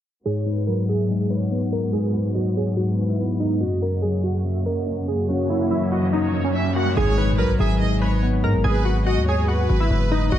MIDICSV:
0, 0, Header, 1, 8, 480
1, 0, Start_track
1, 0, Key_signature, 5, "minor"
1, 0, Tempo, 419580
1, 291, Time_signature, 4, 2, 24, 8
1, 11883, End_track
2, 0, Start_track
2, 0, Title_t, "Violin section"
2, 0, Program_c, 0, 48
2, 295, Note_on_c, 0, 73, 104
2, 744, Note_off_c, 0, 73, 0
2, 767, Note_on_c, 0, 71, 92
2, 997, Note_off_c, 0, 71, 0
2, 1010, Note_on_c, 0, 76, 85
2, 1238, Note_off_c, 0, 76, 0
2, 1252, Note_on_c, 0, 75, 85
2, 1479, Note_off_c, 0, 75, 0
2, 1492, Note_on_c, 0, 73, 78
2, 1720, Note_off_c, 0, 73, 0
2, 2210, Note_on_c, 0, 71, 89
2, 2661, Note_off_c, 0, 71, 0
2, 2692, Note_on_c, 0, 75, 78
2, 2920, Note_off_c, 0, 75, 0
2, 2931, Note_on_c, 0, 73, 78
2, 3159, Note_off_c, 0, 73, 0
2, 3169, Note_on_c, 0, 71, 83
2, 4084, Note_off_c, 0, 71, 0
2, 4130, Note_on_c, 0, 75, 121
2, 4582, Note_off_c, 0, 75, 0
2, 4612, Note_on_c, 0, 73, 86
2, 4840, Note_off_c, 0, 73, 0
2, 4850, Note_on_c, 0, 78, 82
2, 5078, Note_off_c, 0, 78, 0
2, 5090, Note_on_c, 0, 76, 81
2, 5319, Note_off_c, 0, 76, 0
2, 5330, Note_on_c, 0, 75, 79
2, 5559, Note_off_c, 0, 75, 0
2, 6048, Note_on_c, 0, 73, 101
2, 6501, Note_off_c, 0, 73, 0
2, 6533, Note_on_c, 0, 76, 74
2, 6760, Note_off_c, 0, 76, 0
2, 6771, Note_on_c, 0, 75, 78
2, 6999, Note_off_c, 0, 75, 0
2, 7010, Note_on_c, 0, 73, 82
2, 7462, Note_off_c, 0, 73, 0
2, 7496, Note_on_c, 0, 76, 76
2, 7722, Note_off_c, 0, 76, 0
2, 7729, Note_on_c, 0, 78, 82
2, 7958, Note_off_c, 0, 78, 0
2, 7976, Note_on_c, 0, 73, 105
2, 8425, Note_off_c, 0, 73, 0
2, 8449, Note_on_c, 0, 71, 95
2, 8678, Note_off_c, 0, 71, 0
2, 8691, Note_on_c, 0, 76, 81
2, 8919, Note_off_c, 0, 76, 0
2, 8933, Note_on_c, 0, 75, 84
2, 9160, Note_off_c, 0, 75, 0
2, 9174, Note_on_c, 0, 73, 83
2, 9401, Note_off_c, 0, 73, 0
2, 9891, Note_on_c, 0, 71, 91
2, 10342, Note_off_c, 0, 71, 0
2, 10373, Note_on_c, 0, 75, 79
2, 10600, Note_off_c, 0, 75, 0
2, 10611, Note_on_c, 0, 73, 78
2, 10839, Note_off_c, 0, 73, 0
2, 10848, Note_on_c, 0, 71, 86
2, 11764, Note_off_c, 0, 71, 0
2, 11810, Note_on_c, 0, 75, 125
2, 11883, Note_off_c, 0, 75, 0
2, 11883, End_track
3, 0, Start_track
3, 0, Title_t, "Synth keys"
3, 0, Program_c, 1, 88
3, 293, Note_on_c, 1, 68, 85
3, 503, Note_off_c, 1, 68, 0
3, 532, Note_on_c, 1, 71, 70
3, 743, Note_off_c, 1, 71, 0
3, 765, Note_on_c, 1, 70, 69
3, 979, Note_off_c, 1, 70, 0
3, 1018, Note_on_c, 1, 68, 81
3, 1466, Note_off_c, 1, 68, 0
3, 1491, Note_on_c, 1, 71, 74
3, 1942, Note_off_c, 1, 71, 0
3, 1973, Note_on_c, 1, 70, 85
3, 2184, Note_off_c, 1, 70, 0
3, 2206, Note_on_c, 1, 68, 94
3, 2419, Note_off_c, 1, 68, 0
3, 2445, Note_on_c, 1, 66, 73
3, 2659, Note_off_c, 1, 66, 0
3, 2691, Note_on_c, 1, 66, 82
3, 2902, Note_off_c, 1, 66, 0
3, 2943, Note_on_c, 1, 68, 82
3, 3149, Note_off_c, 1, 68, 0
3, 3168, Note_on_c, 1, 66, 83
3, 3508, Note_off_c, 1, 66, 0
3, 3534, Note_on_c, 1, 64, 75
3, 3871, Note_off_c, 1, 64, 0
3, 3889, Note_on_c, 1, 63, 83
3, 4101, Note_off_c, 1, 63, 0
3, 4125, Note_on_c, 1, 66, 91
3, 4339, Note_off_c, 1, 66, 0
3, 4374, Note_on_c, 1, 70, 78
3, 4584, Note_off_c, 1, 70, 0
3, 4601, Note_on_c, 1, 68, 80
3, 4817, Note_off_c, 1, 68, 0
3, 4848, Note_on_c, 1, 66, 78
3, 5300, Note_off_c, 1, 66, 0
3, 5331, Note_on_c, 1, 70, 81
3, 5782, Note_off_c, 1, 70, 0
3, 5814, Note_on_c, 1, 68, 80
3, 6024, Note_off_c, 1, 68, 0
3, 6047, Note_on_c, 1, 66, 90
3, 6260, Note_off_c, 1, 66, 0
3, 6291, Note_on_c, 1, 64, 83
3, 6502, Note_off_c, 1, 64, 0
3, 6531, Note_on_c, 1, 64, 82
3, 6742, Note_off_c, 1, 64, 0
3, 6771, Note_on_c, 1, 66, 69
3, 6982, Note_off_c, 1, 66, 0
3, 7012, Note_on_c, 1, 63, 78
3, 7350, Note_off_c, 1, 63, 0
3, 7372, Note_on_c, 1, 61, 70
3, 7710, Note_off_c, 1, 61, 0
3, 7736, Note_on_c, 1, 66, 78
3, 7945, Note_off_c, 1, 66, 0
3, 7973, Note_on_c, 1, 68, 86
3, 8183, Note_off_c, 1, 68, 0
3, 8212, Note_on_c, 1, 71, 69
3, 8423, Note_off_c, 1, 71, 0
3, 8446, Note_on_c, 1, 70, 73
3, 8659, Note_off_c, 1, 70, 0
3, 8699, Note_on_c, 1, 68, 85
3, 9146, Note_off_c, 1, 68, 0
3, 9171, Note_on_c, 1, 71, 76
3, 9622, Note_off_c, 1, 71, 0
3, 9654, Note_on_c, 1, 70, 88
3, 9864, Note_off_c, 1, 70, 0
3, 9886, Note_on_c, 1, 68, 99
3, 10099, Note_off_c, 1, 68, 0
3, 10125, Note_on_c, 1, 66, 75
3, 10339, Note_off_c, 1, 66, 0
3, 10371, Note_on_c, 1, 66, 88
3, 10582, Note_off_c, 1, 66, 0
3, 10623, Note_on_c, 1, 68, 87
3, 10829, Note_off_c, 1, 68, 0
3, 10848, Note_on_c, 1, 66, 84
3, 11188, Note_off_c, 1, 66, 0
3, 11216, Note_on_c, 1, 64, 78
3, 11552, Note_off_c, 1, 64, 0
3, 11571, Note_on_c, 1, 63, 88
3, 11782, Note_off_c, 1, 63, 0
3, 11806, Note_on_c, 1, 66, 93
3, 11883, Note_off_c, 1, 66, 0
3, 11883, End_track
4, 0, Start_track
4, 0, Title_t, "String section"
4, 0, Program_c, 2, 48
4, 291, Note_on_c, 2, 44, 77
4, 291, Note_on_c, 2, 56, 74
4, 291, Note_on_c, 2, 59, 74
4, 291, Note_on_c, 2, 66, 89
4, 4093, Note_off_c, 2, 44, 0
4, 4093, Note_off_c, 2, 56, 0
4, 4093, Note_off_c, 2, 59, 0
4, 4093, Note_off_c, 2, 66, 0
4, 4131, Note_on_c, 2, 58, 77
4, 4131, Note_on_c, 2, 66, 89
4, 4132, Note_on_c, 2, 42, 78
4, 4132, Note_on_c, 2, 49, 74
4, 7933, Note_off_c, 2, 42, 0
4, 7933, Note_off_c, 2, 49, 0
4, 7933, Note_off_c, 2, 58, 0
4, 7933, Note_off_c, 2, 66, 0
4, 11883, End_track
5, 0, Start_track
5, 0, Title_t, "Tine electric piano"
5, 0, Program_c, 3, 4
5, 292, Note_on_c, 3, 44, 84
5, 514, Note_off_c, 3, 44, 0
5, 527, Note_on_c, 3, 44, 70
5, 543, Control_c, 3, 64, 127
5, 776, Note_on_c, 3, 54, 84
5, 1241, Note_off_c, 3, 44, 0
5, 1255, Note_on_c, 3, 44, 70
5, 1471, Note_off_c, 3, 44, 0
5, 1484, Note_on_c, 3, 44, 70
5, 1731, Note_on_c, 3, 59, 91
5, 1967, Note_on_c, 3, 56, 86
5, 1973, Note_off_c, 3, 54, 0
5, 2187, Note_off_c, 3, 44, 0
5, 2200, Note_on_c, 3, 44, 90
5, 2433, Note_off_c, 3, 44, 0
5, 2447, Note_on_c, 3, 44, 75
5, 2694, Note_on_c, 3, 54, 73
5, 2931, Note_off_c, 3, 59, 0
5, 3155, Note_off_c, 3, 44, 0
5, 3168, Note_on_c, 3, 44, 68
5, 3169, Note_off_c, 3, 56, 0
5, 3403, Note_off_c, 3, 44, 0
5, 3417, Note_on_c, 3, 44, 75
5, 3653, Note_on_c, 3, 59, 90
5, 3889, Note_on_c, 3, 56, 76
5, 3892, Note_off_c, 3, 54, 0
5, 4130, Note_off_c, 3, 56, 0
5, 4132, Note_off_c, 3, 59, 0
5, 4133, Note_on_c, 3, 42, 84
5, 4134, Note_off_c, 3, 44, 0
5, 4143, Control_c, 3, 64, 0
5, 4351, Note_off_c, 3, 42, 0
5, 4359, Control_c, 3, 64, 127
5, 4365, Note_on_c, 3, 42, 72
5, 4615, Note_on_c, 3, 54, 74
5, 5074, Note_off_c, 3, 42, 0
5, 5087, Note_on_c, 3, 42, 68
5, 5323, Note_off_c, 3, 42, 0
5, 5337, Note_on_c, 3, 42, 75
5, 5567, Note_on_c, 3, 61, 93
5, 5806, Note_on_c, 3, 58, 78
5, 5813, Note_off_c, 3, 54, 0
5, 6038, Note_off_c, 3, 42, 0
5, 6052, Note_on_c, 3, 42, 89
5, 6276, Note_off_c, 3, 42, 0
5, 6290, Note_on_c, 3, 42, 75
5, 6527, Note_on_c, 3, 54, 79
5, 6769, Note_off_c, 3, 61, 0
5, 6995, Note_off_c, 3, 42, 0
5, 7008, Note_off_c, 3, 58, 0
5, 7009, Note_on_c, 3, 42, 70
5, 7234, Note_off_c, 3, 42, 0
5, 7248, Note_on_c, 3, 42, 73
5, 7487, Note_on_c, 3, 61, 81
5, 7729, Note_off_c, 3, 54, 0
5, 7735, Note_on_c, 3, 58, 80
5, 7969, Note_off_c, 3, 42, 0
5, 7969, Note_off_c, 3, 61, 0
5, 7971, Note_on_c, 3, 44, 85
5, 7973, Note_off_c, 3, 58, 0
5, 7986, Control_c, 3, 64, 0
5, 8190, Control_c, 3, 64, 127
5, 8194, Note_off_c, 3, 44, 0
5, 8208, Note_on_c, 3, 44, 70
5, 8456, Note_on_c, 3, 54, 87
5, 8922, Note_off_c, 3, 44, 0
5, 8935, Note_on_c, 3, 44, 74
5, 9151, Note_off_c, 3, 44, 0
5, 9165, Note_on_c, 3, 44, 69
5, 9412, Note_on_c, 3, 59, 97
5, 9648, Note_on_c, 3, 56, 86
5, 9653, Note_off_c, 3, 54, 0
5, 9888, Note_off_c, 3, 44, 0
5, 9889, Note_off_c, 3, 56, 0
5, 9891, Note_off_c, 3, 59, 0
5, 11826, Control_c, 3, 64, 0
5, 11883, End_track
6, 0, Start_track
6, 0, Title_t, "808-style bass"
6, 0, Program_c, 4, 38
6, 7971, Note_on_c, 4, 32, 109
6, 8451, Note_on_c, 4, 35, 100
6, 8468, Note_off_c, 4, 32, 0
6, 8679, Note_off_c, 4, 35, 0
6, 8691, Note_on_c, 4, 32, 104
6, 9651, Note_on_c, 4, 44, 102
6, 9668, Note_off_c, 4, 32, 0
6, 9771, Note_on_c, 4, 32, 97
6, 9789, Note_off_c, 4, 44, 0
6, 9885, Note_off_c, 4, 32, 0
6, 9891, Note_on_c, 4, 32, 103
6, 10491, Note_on_c, 4, 39, 97
6, 10508, Note_off_c, 4, 32, 0
6, 11061, Note_off_c, 4, 39, 0
6, 11091, Note_on_c, 4, 32, 108
6, 11321, Note_off_c, 4, 32, 0
6, 11330, Note_on_c, 4, 30, 107
6, 11791, Note_off_c, 4, 30, 0
6, 11811, Note_on_c, 4, 30, 111
6, 11883, Note_off_c, 4, 30, 0
6, 11883, End_track
7, 0, Start_track
7, 0, Title_t, "Impact"
7, 0, Program_c, 5, 103
7, 7971, Note_on_c, 5, 60, 86
7, 9891, Note_off_c, 5, 60, 0
7, 11883, End_track
8, 0, Start_track
8, 0, Title_t, "Riser"
8, 0, Program_c, 6, 103
8, 4131, Note_on_c, 6, 60, 82
8, 7971, Note_off_c, 6, 60, 0
8, 11883, End_track
0, 0, End_of_file